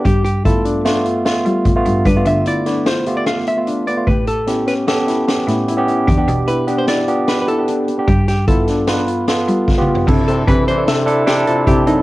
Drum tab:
CC |------------------------------|------------------------------|------------------------------|------------------------------|
HH |x--x--x--x--x--x--x--x--x--x--|x--x--x--x--x--x--x--x--x--x--|x--x--x--x--x--x--x--x--x--x--|x--x--x--x--x--x--x--x--x--x--|
SD |------------o-----o-----------|---------o--o-----o-----------|------o--o--o--o--o--o--------|------------o-----o-----------|
T2 |------------------------------|------------------------------|------------------------------|------------------------------|
FT |------------------------------|------------------------------|------------------------------|------------------------------|
BD |o-----o-----------------o-----|o-----------------------------|o-----------------------------|o-----------------------------|

CC |------------------------------|x-----------------------------|
HH |x--x--x--x--x--x--x--x--------|---x--x--x--x--x--x--x--x--x--|
SD |---o-----o--o-----o-----o-----|------------o-----o-----------|
T2 |--------------------------o---|------------------------------|
FT |----------------------------o-|------------------------------|
BD |o-----o-----------------o-----|o-----o-----------------o-----|